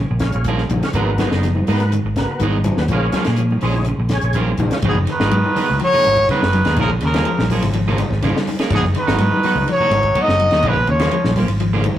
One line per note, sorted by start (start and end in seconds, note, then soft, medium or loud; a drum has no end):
0.00 0.16 C#3 medium
0.11 0.30 A#1 medium
0.11 muted clean electric guitar stroke soft
0.19 0.40 C#3 medium
0.19 0.49 G#3 medium
0.19 0.49 C#4 medium
0.19 0.50 F4 medium
0.19 muted clean electric guitar stroke soft
0.19 kick medium
0.19 snare medium
0.19 closed hi-hat medium
0.32 0.64 A#1 medium
0.32 muted clean electric guitar stroke soft
0.32 closed hi-hat soft
0.44 0.65 D#3 medium
0.44 0.62 F3 medium
0.44 0.62 A#3 medium
0.44 kick medium
0.44 closed hi-hat medium
0.44 high conga medium
0.48 0.62 C#4 medium
0.48 0.62 G#4 medium
0.58 snare soft
0.69 0.80 A#1 medium
0.69 0.89 F3 medium
0.69 muted clean electric guitar stroke soft
0.69 kick medium
0.69 closed hi-hat medium
0.69 high conga medium
0.69 low conga medium
0.83 0.89 C#4 loud
0.83 0.89 F4 loud
0.83 muted clean electric guitar stroke medium
0.83 snare medium
0.83 closed hi-hat soft
0.93 1.24 G#1 loud
0.93 1.13 F3 medium
0.93 1.10 F#3 medium
0.93 1.29 A#3 medium
0.93 1.10 B3 medium
0.93 1.29 B3 medium
0.93 1.10 D#4 medium
0.93 1.30 F#4 loud
0.93 1.10 G#4 medium
0.93 kick medium
0.93 closed hi-hat medium
0.93 high conga soft
0.93 low conga medium
1.18 1.32 F#3 medium
1.18 1.38 F#3 medium
1.18 1.32 B3 medium
1.18 1.32 D#4 medium
1.18 1.32 G#4 medium
1.18 kick medium
1.18 snare medium
1.18 closed hi-hat soft
1.18 high conga medium
1.31 1.61 F#1 medium
1.31 1.47 B3 soft
1.31 1.47 D#4 soft
1.31 1.47 G#4 soft
1.31 snare medium
1.43 1.62 F3 medium
1.43 snare soft
1.43 closed hi-hat medium
1.43 high conga soft
1.55 muted clean electric guitar stroke soft
1.55 high conga medium
1.67 1.98 G#2 loud
1.67 1.86 D#3 medium
1.67 1.91 A#3 medium
1.67 1.81 B3 medium
1.67 1.91 B3 medium
1.67 1.81 D#4 medium
1.67 1.92 F#4 loud
1.67 1.81 G#4 medium
1.67 muted clean electric guitar stroke medium
1.67 open hi-hat medium
1.80 muted clean electric guitar stroke soft
1.80 snare soft
1.80 closed hi-hat medium
1.91 2.11 D#3 medium
1.91 muted clean electric guitar stroke soft
1.91 closed hi-hat medium
1.91 high conga soft
2.04 2.24 G#1 medium
2.04 muted clean electric guitar stroke soft
2.16 2.35 C#3 medium
2.16 2.45 A#3 medium
2.16 2.45 B3 medium
2.16 2.46 F#4 medium
2.16 muted clean electric guitar stroke soft
2.16 kick medium
2.16 snare medium
2.16 closed hi-hat soft
2.31 muted clean electric guitar stroke soft
2.40 2.70 G#1 medium
2.40 2.59 D#3 medium
2.40 2.56 F#3 medium
2.40 2.56 B3 medium
2.40 2.57 D#4 medium
2.40 2.57 G#4 medium
2.40 kick medium
2.40 closed hi-hat medium
2.40 high conga medium
2.52 high conga medium
2.64 2.84 F#3 medium
2.64 muted clean electric guitar stroke soft
2.64 closed hi-hat soft
2.64 high conga medium
2.64 low conga medium
2.77 2.87 D#2 medium
2.77 2.83 B3 loud
2.77 2.84 F#4 loud
2.77 muted clean electric guitar stroke soft
2.77 snare medium
2.88 3.08 A#1 loud
2.88 3.08 F3 medium
2.88 3.06 F3 medium
2.88 3.24 G#3 medium
2.88 3.06 A#3 loud
2.88 3.24 C#4 medium
2.88 kick medium
2.88 closed hi-hat medium
2.88 high conga soft
2.88 low conga medium
2.92 3.06 C#4 medium
2.92 3.25 F4 loud
2.92 3.06 G#4 medium
3.12 3.27 F3 medium
3.12 3.32 F#3 medium
3.12 3.27 A#3 medium
3.12 3.27 C#4 medium
3.12 3.26 G#4 medium
3.12 kick medium
3.12 snare medium
3.12 closed hi-hat medium
3.12 high conga loud
3.24 3.56 A#2 medium
3.24 3.42 A#3 soft
3.24 3.42 C#4 soft
3.24 3.41 G#4 medium
3.24 snare medium
3.24 closed hi-hat soft
3.36 3.56 F3 medium
3.36 closed hi-hat medium
3.36 high conga soft
3.51 muted clean electric guitar stroke soft
3.51 high conga medium
3.61 3.92 A#1 medium
3.61 3.80 D#3 medium
3.61 3.75 F3 medium
3.61 3.85 G#3 medium
3.61 3.85 C#4 medium
3.61 3.75 C#4 medium
3.61 3.85 D#4 medium
3.61 3.75 G#4 medium
3.61 open hi-hat medium
3.74 muted clean electric guitar stroke soft
3.74 low conga medium
3.85 4.04 C#3 medium
3.85 muted clean electric guitar stroke soft
3.85 closed hi-hat medium
3.85 high conga soft
3.98 4.18 A#1 medium
3.98 muted clean electric guitar stroke soft
4.09 4.28 C#3 medium
4.09 4.40 G#3 medium
4.09 4.40 C#4 medium
4.09 muted clean electric guitar stroke soft
4.09 kick medium
4.09 snare medium
4.09 closed hi-hat medium
4.13 4.40 G#4 medium
4.21 4.52 A#1 medium
4.21 muted clean electric guitar stroke soft
4.21 closed hi-hat soft
4.33 4.53 D#3 medium
4.33 4.50 F3 medium
4.33 4.50 A#3 medium
4.33 4.50 C#4 medium
4.33 4.50 G#4 medium
4.33 kick medium
4.33 closed hi-hat medium
4.33 high conga medium
4.48 high conga medium
4.57 4.69 A#1 medium
4.57 4.77 F3 medium
4.57 muted clean electric guitar stroke soft
4.57 kick medium
4.57 closed hi-hat soft
4.57 high conga loud
4.57 low conga medium
4.71 4.77 C#4 medium
4.71 4.78 F4 loud
4.71 muted clean electric guitar stroke soft
4.71 snare medium
4.71 closed hi-hat medium
4.82 4.93 G#1 loud
4.82 5.01 F3 loud
4.82 4.97 F#3 medium
4.82 4.96 B3 medium
4.82 4.96 D#4 medium
4.82 4.96 G#4 medium
4.82 kick loud
4.82 ride bell medium
4.82 high conga soft
4.82 low conga medium
4.89 4.99 B2 medium
4.89 4.99 G#4 medium
4.95 5.05 F#1 loud
4.95 muted clean electric guitar stroke soft
4.95 kick medium
5.07 5.25 D#3 medium
5.07 muted clean electric guitar stroke soft
5.07 snare soft
5.07 ride bell medium
5.11 5.78 D#3 medium
5.11 5.79 B4 loud
5.20 5.30 G#1 medium
5.20 5.35 F#3 medium
5.20 5.35 B3 medium
5.20 5.35 D#4 soft
5.20 5.35 G#4 medium
5.20 snare medium
5.20 high conga medium
5.31 5.42 G#2 loud
5.31 5.50 F#3 medium
5.31 ride bell medium
5.31 high conga soft
5.46 muted clean electric guitar stroke soft
5.46 high conga medium
5.56 5.74 D#3 medium
5.56 5.69 F#3 medium
5.56 5.68 B3 medium
5.56 5.68 D#4 medium
5.56 5.68 G#4 medium
5.56 muted fingered electric bass stroke soft
5.56 open hi-hat medium
5.69 5.80 C#2 medium
5.69 muted clean electric guitar stroke soft
5.69 low conga medium
5.80 5.99 F3 medium
5.80 6.27 F#3 medium
5.80 muted clean electric guitar stroke soft
5.80 ride bell soft
5.80 high conga soft
5.84 6.27 C#5 loud
5.93 6.04 F#3 medium
5.93 6.05 B3 medium
5.93 6.04 D#4 medium
5.93 6.04 G#4 medium
5.93 muted fingered electric bass stroke soft
5.93 low conga medium
6.04 6.25 G#1 medium
6.04 6.23 D#3 medium
6.04 muted clean electric guitar stroke soft
6.04 snare soft
6.04 ride bell soft
6.04 high conga medium
6.17 kick medium
6.17 ride bell soft
6.29 6.47 C#3 medium
6.29 6.42 F#3 medium
6.29 6.42 B3 medium
6.29 6.41 D#4 medium
6.29 6.41 G#4 medium
6.29 6.75 B4 loud
6.29 kick medium
6.29 snare soft
6.29 ride bell medium
6.29 high conga medium
6.33 6.76 D#3 medium
6.42 6.62 F#1 medium
6.42 muted clean electric guitar stroke soft
6.42 snare medium
6.53 6.71 F#3 medium
6.53 muted clean electric guitar stroke soft
6.53 snare soft
6.53 ride bell soft
6.53 high conga medium
6.65 6.75 D#2 medium
6.65 6.78 B3 soft
6.65 6.78 D#4 medium
6.65 6.78 G#4 medium
6.65 snare medium
6.65 ride bell medium
6.76 6.96 A#1 loud
6.76 6.90 C#3 medium
6.76 6.96 D#3 medium
6.76 6.91 F3 medium
6.76 6.90 A#3 medium
6.76 6.90 C#4 medium
6.76 6.90 G#4 medium
6.76 kick loud
6.76 ride bell medium
6.76 high conga soft
6.76 low conga medium
6.81 6.91 A#4 loud
6.90 muted clean electric guitar stroke soft
6.90 kick medium
7.01 7.21 D#2 medium
7.01 7.20 C#3 medium
7.01 7.48 C#3 medium
7.01 muted clean electric guitar stroke soft
7.01 snare soft
7.01 ride bell medium
7.06 7.49 A#4 medium
7.14 7.29 F3 soft
7.14 7.29 A#3 medium
7.14 7.29 C#4 medium
7.14 7.29 G#4 medium
7.14 snare medium
7.14 ride bell medium
7.14 high conga medium
7.25 7.44 F3 medium
7.25 ride bell medium
7.25 high conga soft
7.38 7.58 A#1 medium
7.38 muted clean electric guitar stroke soft
7.38 snare medium
7.38 high conga medium
7.50 7.63 F3 medium
7.50 7.68 F#3 medium
7.50 7.63 A#3 medium
7.50 7.63 C#4 medium
7.50 7.63 G#4 medium
7.50 kick medium
7.50 open hi-hat medium
7.62 8.02 G#1 loud
7.62 muted clean electric guitar stroke soft
7.62 snare soft
7.62 ride bell medium
7.62 low conga medium
7.74 7.93 F3 medium
7.74 muted clean electric guitar stroke soft
7.74 ride bell medium
7.74 high conga soft
7.88 7.99 F3 medium
7.88 7.99 A#3 medium
7.88 7.99 C#4 medium
7.88 7.99 G#4 medium
7.88 low conga medium
7.98 8.17 D#3 medium
7.98 muted clean electric guitar stroke soft
7.98 snare soft
7.98 ride bell medium
7.98 high conga loud
8.11 8.30 G#1 medium
8.11 kick medium
8.11 snare soft
8.22 8.41 C#3 medium
8.22 8.36 F3 medium
8.22 8.36 A#3 medium
8.22 8.36 C#4 medium
8.22 8.36 G#4 medium
8.22 kick medium
8.22 snare soft
8.22 ride bell medium
8.22 high conga medium
8.36 muted clean electric guitar stroke soft
8.36 snare medium
8.36 high conga medium
8.47 muted clean electric guitar stroke soft
8.47 snare soft
8.47 open hi-hat medium
8.47 high conga medium
8.59 8.72 A#3 medium
8.59 8.72 C#4 medium
8.59 8.71 G#4 medium
8.59 snare medium
8.59 ride bell medium
8.70 8.81 G#1 loud
8.70 8.84 B2 medium
8.70 8.89 F3 medium
8.70 8.84 F#3 medium
8.70 8.83 B3 medium
8.70 8.83 D#4 medium
8.70 8.83 F#4 medium
8.70 kick loud
8.70 snare soft
8.70 ride bell medium
8.70 high conga soft
8.70 low conga medium
8.75 8.85 G#4 loud
8.83 8.93 F#1 medium
8.83 muted clean electric guitar stroke soft
8.83 kick medium
8.83 snare soft
8.95 9.14 D#3 medium
8.95 muted clean electric guitar stroke soft
8.95 snare soft
8.95 ride bell medium
8.99 9.66 D#3 medium
8.99 9.66 B4 loud
9.07 9.17 G#1 medium
9.07 9.22 F#3 soft
9.07 9.22 B3 medium
9.07 9.22 D#4 medium
9.07 9.22 F#4 medium
9.07 snare medium
9.07 high conga loud
9.18 9.29 G#2 medium
9.18 9.38 F#3 medium
9.18 snare soft
9.18 ride bell medium
9.18 high conga soft
9.32 muted clean electric guitar stroke soft
9.32 high conga loud
9.43 9.62 F#3 medium
9.43 9.56 F#3 medium
9.43 9.57 B3 medium
9.43 9.57 D#4 medium
9.43 9.56 F#4 medium
9.43 muted fingered electric bass stroke soft
9.43 open hi-hat medium
9.55 9.65 C#2 medium
9.55 muted clean electric guitar stroke soft
9.55 low conga medium
9.68 9.87 F3 medium
9.68 muted clean electric guitar stroke soft
9.68 ride bell medium
9.68 high conga soft
9.72 10.20 F#3 medium
9.72 10.23 C#5 loud
9.80 9.91 F#3 medium
9.80 9.91 B3 medium
9.80 9.91 D#4 medium
9.80 9.92 F#4 medium
9.80 muted fingered electric bass stroke soft
9.80 low conga medium
9.90 10.11 G#1 medium
9.90 10.10 D#3 medium
9.90 muted clean electric guitar stroke soft
9.90 snare soft
9.90 ride bell medium
9.90 high conga medium
10.03 kick medium
10.03 ride bell soft
10.15 10.28 F#3 medium
10.15 10.28 B3 medium
10.15 10.28 D#4 medium
10.15 10.27 F#4 medium
10.15 kick medium
10.15 ride bell medium
10.15 high conga medium
10.20 10.70 F#3 medium
10.20 10.70 D#5 loud
10.28 10.48 F#1 loud
10.28 muted clean electric guitar stroke soft
10.28 snare medium
10.40 10.59 F#3 medium
10.40 muted clean electric guitar stroke soft
10.40 ride bell medium
10.40 high conga medium
10.51 10.62 D#2 medium
10.51 10.65 B3 soft
10.51 10.65 D#4 medium
10.51 10.65 F#4 medium
10.51 snare medium
10.51 ride bell soft
10.63 10.84 A#1 loud
10.63 10.82 D#3 medium
10.63 10.77 A#3 medium
10.63 10.77 C#4 medium
10.63 10.76 G#4 medium
10.63 muted clean electric guitar stroke medium
10.63 kick loud
10.63 ride bell soft
10.63 high conga soft
10.63 low conga medium
10.68 10.90 F3 medium
10.68 10.90 B4 loud
10.76 muted clean electric guitar stroke soft
10.76 kick medium
10.87 11.08 D#2 loud
10.87 11.07 C#3 medium
10.87 11.35 C#5 medium
10.87 muted clean electric guitar stroke soft
10.87 ride bell soft
10.93 11.36 F3 medium
10.99 11.15 F3 soft
10.99 11.15 A#3 medium
10.99 11.15 C#4 medium
10.99 11.15 G#4 medium
10.99 snare medium
10.99 ride bell medium
10.99 high conga loud
11.11 11.31 F3 medium
11.11 ride bell medium
11.11 high conga soft
11.24 11.44 A#1 medium
11.24 muted clean electric guitar stroke soft
11.24 snare medium
11.24 high conga medium
11.36 11.49 F3 medium
11.36 11.55 F#3 medium
11.36 11.47 A#3 medium
11.36 11.47 C#4 medium
11.36 kick medium
11.36 open hi-hat medium
11.48 11.87 G#1 medium
11.48 muted clean electric guitar stroke soft
11.48 ride bell medium
11.60 11.79 F3 medium
11.60 muted clean electric guitar stroke soft
11.60 ride bell soft
11.60 high conga soft
11.73 11.83 F3 medium
11.73 11.84 A#3 medium
11.73 11.84 C#4 medium
11.73 11.84 G#4 medium
11.73 low conga medium
11.84 11.99 D#3 medium
11.84 muted clean electric guitar stroke soft
11.84 ride bell medium
11.84 high conga medium